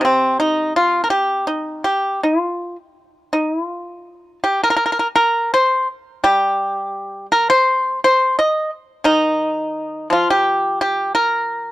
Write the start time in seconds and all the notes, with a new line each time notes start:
0.01 C3 C4
0.40 D#4
0.76 F4
1.04 A#4
1.10 G4
1.47 D#4
1.84 G4
2.23 F4
3.33 D#4
3.53 E4
3.65 F4
4.44 G4
4.63 A#4
4.70 A#4
4.76 A#4
4.86 A#4
4.92 A#4
4.99 A#4
5.16 A#4
5.54 C5
6.24 G3 G4
7.32 A#4
7.50 C5
8.04 C5
8.39 D#5
9.04 D#3 D#4
10.10 F3 F4
10.30 G4
10.81 G4
11.15 A#4